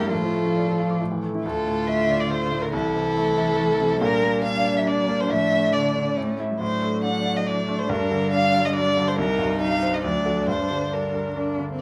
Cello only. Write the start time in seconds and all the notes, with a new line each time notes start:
0.01 G3
0.12 F3
1.45 D3
2.74 E3
4.01 G3
5.31 F3
5.74 D3
6.17 A3
6.50 G3
6.60 F#3
7.89 G3
10.04 F#3
10.49 G3
10.93 G3
11.37 D4
11.72 C4